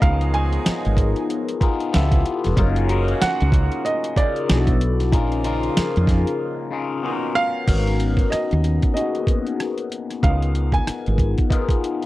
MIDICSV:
0, 0, Header, 1, 7, 480
1, 0, Start_track
1, 0, Tempo, 638298
1, 14, Time_signature, 4, 2, 24, 8
1, 9068, End_track
2, 0, Start_track
2, 0, Title_t, "Grand piano"
2, 0, Program_c, 0, 0
2, 14, Note_on_c, 0, 77, 92
2, 253, Note_on_c, 0, 80, 94
2, 261, Note_off_c, 0, 77, 0
2, 703, Note_off_c, 0, 80, 0
2, 2419, Note_on_c, 0, 78, 103
2, 2866, Note_off_c, 0, 78, 0
2, 2894, Note_on_c, 0, 75, 90
2, 3137, Note_on_c, 0, 74, 88
2, 3141, Note_off_c, 0, 75, 0
2, 5265, Note_off_c, 0, 74, 0
2, 5530, Note_on_c, 0, 77, 122
2, 6222, Note_off_c, 0, 77, 0
2, 6243, Note_on_c, 0, 75, 79
2, 6711, Note_off_c, 0, 75, 0
2, 6722, Note_on_c, 0, 75, 74
2, 7418, Note_off_c, 0, 75, 0
2, 7695, Note_on_c, 0, 77, 81
2, 8048, Note_off_c, 0, 77, 0
2, 8072, Note_on_c, 0, 80, 95
2, 8523, Note_off_c, 0, 80, 0
2, 9068, End_track
3, 0, Start_track
3, 0, Title_t, "Tine electric piano"
3, 0, Program_c, 1, 4
3, 0, Control_c, 1, 64, 127
3, 6, Note_on_c, 1, 59, 77
3, 13, Note_on_c, 1, 63, 76
3, 19, Note_on_c, 1, 65, 68
3, 24, Control_c, 1, 64, 0
3, 25, Note_on_c, 1, 68, 71
3, 31, Note_on_c, 1, 70, 79
3, 145, Control_c, 1, 64, 127
3, 214, Note_off_c, 1, 59, 0
3, 218, Note_off_c, 1, 63, 0
3, 221, Note_off_c, 1, 65, 0
3, 224, Note_off_c, 1, 68, 0
3, 227, Note_off_c, 1, 70, 0
3, 245, Note_on_c, 1, 59, 64
3, 253, Note_on_c, 1, 63, 65
3, 258, Note_on_c, 1, 65, 61
3, 263, Note_on_c, 1, 68, 61
3, 269, Note_on_c, 1, 73, 75
3, 1052, Note_off_c, 1, 59, 0
3, 1056, Note_off_c, 1, 63, 0
3, 1058, Note_off_c, 1, 65, 0
3, 1061, Note_off_c, 1, 68, 0
3, 1064, Note_off_c, 1, 73, 0
3, 1205, Note_on_c, 1, 59, 91
3, 1211, Note_on_c, 1, 63, 78
3, 1216, Note_on_c, 1, 65, 81
3, 1223, Note_on_c, 1, 68, 83
3, 1227, Note_on_c, 1, 70, 95
3, 1437, Note_off_c, 1, 59, 0
3, 1446, Note_on_c, 1, 59, 96
3, 1449, Note_off_c, 1, 65, 0
3, 1452, Note_off_c, 1, 63, 0
3, 1452, Note_on_c, 1, 64, 87
3, 1458, Note_off_c, 1, 68, 0
3, 1458, Note_on_c, 1, 65, 88
3, 1460, Note_off_c, 1, 70, 0
3, 1463, Control_c, 1, 64, 0
3, 1464, Note_on_c, 1, 67, 93
3, 1468, Note_on_c, 1, 69, 105
3, 1580, Control_c, 1, 64, 127
3, 1859, Note_off_c, 1, 59, 0
3, 1862, Note_off_c, 1, 64, 0
3, 1865, Note_off_c, 1, 65, 0
3, 1868, Note_off_c, 1, 67, 0
3, 1870, Note_off_c, 1, 69, 0
3, 1925, Note_on_c, 1, 61, 93
3, 1931, Note_on_c, 1, 63, 86
3, 1936, Note_on_c, 1, 65, 90
3, 1941, Note_on_c, 1, 68, 87
3, 1944, Control_c, 1, 64, 0
3, 1949, Note_on_c, 1, 70, 110
3, 2056, Control_c, 1, 64, 127
3, 2134, Note_off_c, 1, 61, 0
3, 2137, Note_off_c, 1, 63, 0
3, 2139, Note_off_c, 1, 65, 0
3, 2142, Note_off_c, 1, 68, 0
3, 2146, Note_off_c, 1, 70, 0
3, 2168, Note_on_c, 1, 61, 88
3, 2174, Note_on_c, 1, 63, 69
3, 2178, Note_on_c, 1, 66, 77
3, 2184, Note_on_c, 1, 68, 76
3, 2190, Note_on_c, 1, 70, 90
3, 2973, Note_off_c, 1, 61, 0
3, 2976, Note_off_c, 1, 63, 0
3, 2978, Note_off_c, 1, 66, 0
3, 2981, Note_off_c, 1, 68, 0
3, 2984, Note_off_c, 1, 70, 0
3, 3128, Note_on_c, 1, 49, 76
3, 3135, Note_on_c, 1, 63, 68
3, 3140, Note_on_c, 1, 65, 68
3, 3146, Note_on_c, 1, 68, 68
3, 3152, Note_on_c, 1, 70, 77
3, 3370, Note_on_c, 1, 59, 77
3, 3371, Note_off_c, 1, 49, 0
3, 3374, Note_off_c, 1, 63, 0
3, 3376, Note_on_c, 1, 62, 74
3, 3377, Note_off_c, 1, 65, 0
3, 3380, Note_off_c, 1, 68, 0
3, 3381, Note_on_c, 1, 64, 77
3, 3383, Note_off_c, 1, 70, 0
3, 3385, Control_c, 1, 64, 0
3, 3387, Note_on_c, 1, 66, 70
3, 3392, Note_on_c, 1, 68, 66
3, 3440, Note_off_c, 1, 68, 0
3, 3440, Note_on_c, 1, 69, 84
3, 3525, Control_c, 1, 64, 127
3, 3781, Note_off_c, 1, 59, 0
3, 3784, Note_off_c, 1, 62, 0
3, 3787, Note_off_c, 1, 64, 0
3, 3789, Note_off_c, 1, 66, 0
3, 3816, Note_off_c, 1, 69, 0
3, 3847, Note_on_c, 1, 61, 92
3, 3852, Note_on_c, 1, 63, 83
3, 3857, Note_on_c, 1, 65, 90
3, 3863, Control_c, 1, 64, 0
3, 3863, Note_on_c, 1, 68, 82
3, 3868, Note_on_c, 1, 70, 110
3, 4012, Control_c, 1, 64, 127
3, 4055, Note_off_c, 1, 61, 0
3, 4057, Note_off_c, 1, 63, 0
3, 4060, Note_off_c, 1, 65, 0
3, 4063, Note_off_c, 1, 68, 0
3, 4066, Note_off_c, 1, 70, 0
3, 4089, Note_on_c, 1, 49, 84
3, 4094, Note_on_c, 1, 63, 74
3, 4100, Note_on_c, 1, 65, 76
3, 4106, Note_on_c, 1, 68, 72
3, 4111, Note_on_c, 1, 70, 92
3, 4894, Note_off_c, 1, 49, 0
3, 4896, Note_off_c, 1, 63, 0
3, 4899, Note_off_c, 1, 65, 0
3, 4902, Note_off_c, 1, 68, 0
3, 4905, Note_off_c, 1, 70, 0
3, 5043, Note_on_c, 1, 49, 87
3, 5049, Note_on_c, 1, 63, 76
3, 5055, Note_on_c, 1, 65, 81
3, 5061, Note_on_c, 1, 68, 73
3, 5066, Note_on_c, 1, 70, 91
3, 5283, Note_on_c, 1, 59, 96
3, 5284, Note_off_c, 1, 65, 0
3, 5288, Note_off_c, 1, 49, 0
3, 5288, Note_on_c, 1, 61, 87
3, 5291, Note_off_c, 1, 63, 0
3, 5293, Note_on_c, 1, 65, 86
3, 5297, Note_off_c, 1, 68, 0
3, 5299, Note_on_c, 1, 66, 91
3, 5300, Note_off_c, 1, 70, 0
3, 5303, Control_c, 1, 64, 0
3, 5305, Note_on_c, 1, 68, 80
3, 5354, Note_on_c, 1, 70, 102
3, 5356, Note_off_c, 1, 68, 0
3, 5431, Control_c, 1, 64, 127
3, 5697, Note_off_c, 1, 59, 0
3, 5700, Note_off_c, 1, 61, 0
3, 5703, Note_off_c, 1, 65, 0
3, 5706, Note_off_c, 1, 66, 0
3, 5733, Note_off_c, 1, 70, 0
3, 5764, Note_on_c, 1, 59, 64
3, 5770, Note_on_c, 1, 61, 63
3, 5776, Note_on_c, 1, 63, 58
3, 5782, Control_c, 1, 64, 0
3, 5782, Note_on_c, 1, 66, 58
3, 5787, Note_on_c, 1, 70, 76
3, 5907, Control_c, 1, 64, 127
3, 6571, Note_off_c, 1, 59, 0
3, 6574, Note_off_c, 1, 61, 0
3, 6577, Note_off_c, 1, 63, 0
3, 6580, Note_off_c, 1, 66, 0
3, 6583, Note_off_c, 1, 70, 0
3, 6726, Note_on_c, 1, 58, 55
3, 6732, Note_on_c, 1, 61, 57
3, 6737, Note_on_c, 1, 63, 59
3, 6743, Note_on_c, 1, 66, 63
3, 6748, Note_on_c, 1, 68, 74
3, 6775, Note_on_c, 1, 59, 70
3, 6786, Note_off_c, 1, 58, 0
3, 7535, Note_off_c, 1, 61, 0
3, 7538, Note_off_c, 1, 63, 0
3, 7541, Note_off_c, 1, 66, 0
3, 7543, Note_off_c, 1, 68, 0
3, 7557, Note_off_c, 1, 59, 0
3, 7687, Note_on_c, 1, 59, 69
3, 7693, Note_on_c, 1, 63, 64
3, 7699, Note_on_c, 1, 64, 55
3, 7702, Control_c, 1, 64, 0
3, 7703, Note_on_c, 1, 68, 61
3, 7710, Note_on_c, 1, 70, 71
3, 7747, Note_on_c, 1, 65, 62
3, 7753, Note_off_c, 1, 64, 0
3, 7831, Control_c, 1, 64, 127
3, 8493, Note_off_c, 1, 59, 0
3, 8496, Note_off_c, 1, 63, 0
3, 8501, Note_off_c, 1, 68, 0
3, 8504, Note_off_c, 1, 70, 0
3, 8523, Note_off_c, 1, 65, 0
3, 8646, Note_on_c, 1, 59, 83
3, 8652, Note_on_c, 1, 63, 76
3, 8657, Note_on_c, 1, 65, 76
3, 8663, Note_on_c, 1, 68, 76
3, 8670, Note_on_c, 1, 70, 90
3, 9068, Note_off_c, 1, 59, 0
3, 9068, Note_off_c, 1, 63, 0
3, 9068, Note_off_c, 1, 65, 0
3, 9068, Note_off_c, 1, 68, 0
3, 9068, Note_off_c, 1, 70, 0
3, 9068, End_track
4, 0, Start_track
4, 0, Title_t, "Horn section"
4, 0, Program_c, 2, 61
4, 13, Note_on_c, 2, 56, 72
4, 13, Note_on_c, 2, 68, 78
4, 14, Note_on_c, 2, 53, 76
4, 14, Note_on_c, 2, 63, 72
4, 1189, Note_off_c, 2, 56, 0
4, 1189, Note_off_c, 2, 68, 0
4, 1190, Note_off_c, 2, 53, 0
4, 1190, Note_off_c, 2, 63, 0
4, 1455, Note_on_c, 2, 64, 66
4, 1456, Note_on_c, 2, 53, 66
4, 1456, Note_on_c, 2, 57, 68
4, 1456, Note_on_c, 2, 69, 74
4, 1690, Note_off_c, 2, 53, 0
4, 1690, Note_off_c, 2, 57, 0
4, 1690, Note_off_c, 2, 64, 0
4, 1690, Note_off_c, 2, 69, 0
4, 1937, Note_on_c, 2, 49, 71
4, 1937, Note_on_c, 2, 54, 77
4, 1937, Note_on_c, 2, 58, 74
4, 1937, Note_on_c, 2, 66, 84
4, 3111, Note_off_c, 2, 49, 0
4, 3111, Note_off_c, 2, 54, 0
4, 3111, Note_off_c, 2, 66, 0
4, 3112, Note_off_c, 2, 58, 0
4, 3375, Note_on_c, 2, 59, 67
4, 3376, Note_on_c, 2, 50, 64
4, 3377, Note_on_c, 2, 54, 67
4, 3377, Note_on_c, 2, 66, 73
4, 3609, Note_off_c, 2, 59, 0
4, 3610, Note_off_c, 2, 50, 0
4, 3610, Note_off_c, 2, 54, 0
4, 3610, Note_off_c, 2, 66, 0
4, 3856, Note_on_c, 2, 53, 74
4, 3856, Note_on_c, 2, 65, 81
4, 3857, Note_on_c, 2, 49, 72
4, 3857, Note_on_c, 2, 58, 69
4, 5031, Note_off_c, 2, 49, 0
4, 5031, Note_off_c, 2, 53, 0
4, 5031, Note_off_c, 2, 58, 0
4, 5031, Note_off_c, 2, 65, 0
4, 5291, Note_on_c, 2, 51, 61
4, 5291, Note_on_c, 2, 63, 67
4, 5292, Note_on_c, 2, 58, 66
4, 5293, Note_on_c, 2, 47, 58
4, 5528, Note_off_c, 2, 47, 0
4, 5528, Note_off_c, 2, 51, 0
4, 5528, Note_off_c, 2, 58, 0
4, 5528, Note_off_c, 2, 63, 0
4, 9068, End_track
5, 0, Start_track
5, 0, Title_t, "Fretless electric bass"
5, 0, Program_c, 3, 35
5, 23, Note_on_c, 3, 37, 100
5, 432, Note_off_c, 3, 37, 0
5, 649, Note_on_c, 3, 32, 78
5, 849, Note_off_c, 3, 32, 0
5, 1472, Note_on_c, 3, 37, 99
5, 1670, Note_off_c, 3, 37, 0
5, 1852, Note_on_c, 3, 28, 85
5, 1930, Note_off_c, 3, 28, 0
5, 1941, Note_on_c, 3, 30, 112
5, 2350, Note_off_c, 3, 30, 0
5, 2570, Note_on_c, 3, 37, 87
5, 2769, Note_off_c, 3, 37, 0
5, 3390, Note_on_c, 3, 35, 101
5, 3863, Note_off_c, 3, 35, 0
5, 3863, Note_on_c, 3, 34, 97
5, 4272, Note_off_c, 3, 34, 0
5, 4489, Note_on_c, 3, 41, 90
5, 4689, Note_off_c, 3, 41, 0
5, 5781, Note_on_c, 3, 32, 86
5, 6190, Note_off_c, 3, 32, 0
5, 6411, Note_on_c, 3, 39, 76
5, 6610, Note_off_c, 3, 39, 0
5, 7702, Note_on_c, 3, 37, 94
5, 8111, Note_off_c, 3, 37, 0
5, 8329, Note_on_c, 3, 32, 71
5, 8529, Note_off_c, 3, 32, 0
5, 9068, End_track
6, 0, Start_track
6, 0, Title_t, "Muted fretless electric bass strokes"
6, 511, Note_on_c, 9, 29, 45
6, 586, Note_off_c, 9, 29, 0
6, 2429, Note_on_c, 9, 29, 46
6, 2504, Note_off_c, 9, 29, 0
6, 4352, Note_on_c, 9, 29, 48
6, 4427, Note_off_c, 9, 29, 0
6, 6269, Note_on_c, 9, 29, 41
6, 6344, Note_off_c, 9, 29, 0
6, 8192, Note_on_c, 9, 29, 40
6, 8267, Note_off_c, 9, 29, 0
6, 9068, End_track
7, 0, Start_track
7, 0, Title_t, "Drums"
7, 13, Note_on_c, 9, 36, 103
7, 19, Note_on_c, 9, 42, 81
7, 89, Note_off_c, 9, 36, 0
7, 94, Note_off_c, 9, 42, 0
7, 158, Note_on_c, 9, 42, 43
7, 233, Note_off_c, 9, 42, 0
7, 255, Note_on_c, 9, 42, 74
7, 331, Note_off_c, 9, 42, 0
7, 395, Note_on_c, 9, 42, 42
7, 470, Note_off_c, 9, 42, 0
7, 497, Note_on_c, 9, 38, 107
7, 501, Note_on_c, 9, 42, 113
7, 572, Note_off_c, 9, 38, 0
7, 576, Note_off_c, 9, 42, 0
7, 639, Note_on_c, 9, 42, 40
7, 714, Note_off_c, 9, 42, 0
7, 728, Note_on_c, 9, 36, 98
7, 736, Note_on_c, 9, 42, 64
7, 803, Note_off_c, 9, 36, 0
7, 811, Note_off_c, 9, 42, 0
7, 873, Note_on_c, 9, 42, 46
7, 948, Note_off_c, 9, 42, 0
7, 978, Note_on_c, 9, 42, 87
7, 1053, Note_off_c, 9, 42, 0
7, 1117, Note_on_c, 9, 42, 53
7, 1192, Note_off_c, 9, 42, 0
7, 1211, Note_on_c, 9, 36, 98
7, 1217, Note_on_c, 9, 42, 62
7, 1286, Note_off_c, 9, 36, 0
7, 1292, Note_off_c, 9, 42, 0
7, 1356, Note_on_c, 9, 42, 44
7, 1432, Note_off_c, 9, 42, 0
7, 1458, Note_on_c, 9, 42, 77
7, 1459, Note_on_c, 9, 38, 107
7, 1533, Note_off_c, 9, 42, 0
7, 1534, Note_off_c, 9, 38, 0
7, 1592, Note_on_c, 9, 36, 97
7, 1592, Note_on_c, 9, 42, 50
7, 1667, Note_off_c, 9, 36, 0
7, 1667, Note_off_c, 9, 42, 0
7, 1697, Note_on_c, 9, 42, 69
7, 1772, Note_off_c, 9, 42, 0
7, 1836, Note_on_c, 9, 38, 31
7, 1837, Note_on_c, 9, 42, 48
7, 1911, Note_off_c, 9, 38, 0
7, 1913, Note_off_c, 9, 42, 0
7, 1932, Note_on_c, 9, 36, 104
7, 1934, Note_on_c, 9, 42, 81
7, 2007, Note_off_c, 9, 36, 0
7, 2010, Note_off_c, 9, 42, 0
7, 2076, Note_on_c, 9, 42, 48
7, 2152, Note_off_c, 9, 42, 0
7, 2175, Note_on_c, 9, 42, 72
7, 2250, Note_off_c, 9, 42, 0
7, 2318, Note_on_c, 9, 42, 46
7, 2393, Note_off_c, 9, 42, 0
7, 2418, Note_on_c, 9, 38, 109
7, 2422, Note_on_c, 9, 42, 118
7, 2493, Note_off_c, 9, 38, 0
7, 2497, Note_off_c, 9, 42, 0
7, 2560, Note_on_c, 9, 42, 37
7, 2636, Note_off_c, 9, 42, 0
7, 2647, Note_on_c, 9, 36, 94
7, 2658, Note_on_c, 9, 42, 63
7, 2723, Note_off_c, 9, 36, 0
7, 2733, Note_off_c, 9, 42, 0
7, 2795, Note_on_c, 9, 42, 47
7, 2870, Note_off_c, 9, 42, 0
7, 2900, Note_on_c, 9, 42, 90
7, 2976, Note_off_c, 9, 42, 0
7, 3038, Note_on_c, 9, 42, 58
7, 3113, Note_off_c, 9, 42, 0
7, 3132, Note_on_c, 9, 36, 90
7, 3140, Note_on_c, 9, 42, 64
7, 3207, Note_off_c, 9, 36, 0
7, 3215, Note_off_c, 9, 42, 0
7, 3280, Note_on_c, 9, 42, 40
7, 3355, Note_off_c, 9, 42, 0
7, 3380, Note_on_c, 9, 38, 120
7, 3380, Note_on_c, 9, 42, 78
7, 3455, Note_off_c, 9, 42, 0
7, 3456, Note_off_c, 9, 38, 0
7, 3512, Note_on_c, 9, 36, 96
7, 3513, Note_on_c, 9, 42, 50
7, 3587, Note_off_c, 9, 36, 0
7, 3588, Note_off_c, 9, 42, 0
7, 3618, Note_on_c, 9, 42, 65
7, 3693, Note_off_c, 9, 42, 0
7, 3760, Note_on_c, 9, 38, 31
7, 3761, Note_on_c, 9, 42, 49
7, 3835, Note_off_c, 9, 38, 0
7, 3836, Note_off_c, 9, 42, 0
7, 3854, Note_on_c, 9, 36, 106
7, 3860, Note_on_c, 9, 42, 74
7, 3929, Note_off_c, 9, 36, 0
7, 3935, Note_off_c, 9, 42, 0
7, 4000, Note_on_c, 9, 42, 47
7, 4075, Note_off_c, 9, 42, 0
7, 4094, Note_on_c, 9, 42, 75
7, 4169, Note_off_c, 9, 42, 0
7, 4237, Note_on_c, 9, 42, 44
7, 4312, Note_off_c, 9, 42, 0
7, 4339, Note_on_c, 9, 38, 109
7, 4343, Note_on_c, 9, 42, 110
7, 4414, Note_off_c, 9, 38, 0
7, 4418, Note_off_c, 9, 42, 0
7, 4481, Note_on_c, 9, 42, 38
7, 4557, Note_off_c, 9, 42, 0
7, 4567, Note_on_c, 9, 36, 97
7, 4578, Note_on_c, 9, 42, 61
7, 4581, Note_on_c, 9, 38, 36
7, 4643, Note_off_c, 9, 36, 0
7, 4653, Note_off_c, 9, 42, 0
7, 4656, Note_off_c, 9, 38, 0
7, 4717, Note_on_c, 9, 42, 50
7, 4792, Note_off_c, 9, 42, 0
7, 5772, Note_on_c, 9, 36, 94
7, 5772, Note_on_c, 9, 49, 81
7, 5779, Note_on_c, 9, 42, 72
7, 5847, Note_off_c, 9, 36, 0
7, 5847, Note_off_c, 9, 49, 0
7, 5855, Note_off_c, 9, 42, 0
7, 5921, Note_on_c, 9, 42, 43
7, 5996, Note_off_c, 9, 42, 0
7, 6014, Note_on_c, 9, 42, 68
7, 6089, Note_off_c, 9, 42, 0
7, 6143, Note_on_c, 9, 36, 84
7, 6157, Note_on_c, 9, 42, 39
7, 6218, Note_off_c, 9, 36, 0
7, 6232, Note_off_c, 9, 42, 0
7, 6257, Note_on_c, 9, 37, 94
7, 6262, Note_on_c, 9, 42, 97
7, 6333, Note_off_c, 9, 37, 0
7, 6337, Note_off_c, 9, 42, 0
7, 6401, Note_on_c, 9, 42, 33
7, 6476, Note_off_c, 9, 42, 0
7, 6498, Note_on_c, 9, 42, 56
7, 6501, Note_on_c, 9, 37, 32
7, 6573, Note_off_c, 9, 42, 0
7, 6577, Note_off_c, 9, 37, 0
7, 6636, Note_on_c, 9, 42, 43
7, 6640, Note_on_c, 9, 36, 74
7, 6711, Note_off_c, 9, 42, 0
7, 6716, Note_off_c, 9, 36, 0
7, 6743, Note_on_c, 9, 42, 79
7, 6819, Note_off_c, 9, 42, 0
7, 6880, Note_on_c, 9, 42, 46
7, 6955, Note_off_c, 9, 42, 0
7, 6971, Note_on_c, 9, 36, 84
7, 6981, Note_on_c, 9, 42, 56
7, 7046, Note_off_c, 9, 36, 0
7, 7056, Note_off_c, 9, 42, 0
7, 7118, Note_on_c, 9, 42, 38
7, 7193, Note_off_c, 9, 42, 0
7, 7219, Note_on_c, 9, 42, 75
7, 7220, Note_on_c, 9, 37, 89
7, 7294, Note_off_c, 9, 42, 0
7, 7295, Note_off_c, 9, 37, 0
7, 7352, Note_on_c, 9, 42, 46
7, 7427, Note_off_c, 9, 42, 0
7, 7458, Note_on_c, 9, 42, 62
7, 7534, Note_off_c, 9, 42, 0
7, 7598, Note_on_c, 9, 37, 28
7, 7600, Note_on_c, 9, 42, 42
7, 7674, Note_off_c, 9, 37, 0
7, 7675, Note_off_c, 9, 42, 0
7, 7693, Note_on_c, 9, 36, 92
7, 7700, Note_on_c, 9, 42, 70
7, 7768, Note_off_c, 9, 36, 0
7, 7775, Note_off_c, 9, 42, 0
7, 7839, Note_on_c, 9, 42, 43
7, 7914, Note_off_c, 9, 42, 0
7, 7934, Note_on_c, 9, 42, 60
7, 8009, Note_off_c, 9, 42, 0
7, 8063, Note_on_c, 9, 36, 85
7, 8075, Note_on_c, 9, 42, 38
7, 8139, Note_off_c, 9, 36, 0
7, 8151, Note_off_c, 9, 42, 0
7, 8177, Note_on_c, 9, 37, 102
7, 8181, Note_on_c, 9, 42, 105
7, 8252, Note_off_c, 9, 37, 0
7, 8256, Note_off_c, 9, 42, 0
7, 8320, Note_on_c, 9, 42, 32
7, 8395, Note_off_c, 9, 42, 0
7, 8408, Note_on_c, 9, 36, 88
7, 8418, Note_on_c, 9, 42, 57
7, 8483, Note_off_c, 9, 36, 0
7, 8493, Note_off_c, 9, 42, 0
7, 8555, Note_on_c, 9, 42, 40
7, 8561, Note_on_c, 9, 36, 77
7, 8631, Note_off_c, 9, 42, 0
7, 8637, Note_off_c, 9, 36, 0
7, 8652, Note_on_c, 9, 36, 85
7, 8663, Note_on_c, 9, 42, 85
7, 8727, Note_off_c, 9, 36, 0
7, 8738, Note_off_c, 9, 42, 0
7, 8788, Note_on_c, 9, 36, 89
7, 8801, Note_on_c, 9, 42, 50
7, 8863, Note_off_c, 9, 36, 0
7, 8876, Note_off_c, 9, 42, 0
7, 8904, Note_on_c, 9, 42, 61
7, 8979, Note_off_c, 9, 42, 0
7, 9043, Note_on_c, 9, 42, 40
7, 9068, Note_off_c, 9, 42, 0
7, 9068, End_track
0, 0, End_of_file